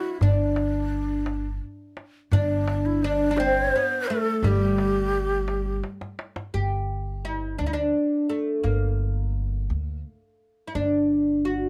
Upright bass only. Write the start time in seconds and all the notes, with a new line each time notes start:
0.21 G1
2.31 G1
4.43 G1
6.54 G1
7.59 D2
8.64 G1
9.70 D2
10.75 G1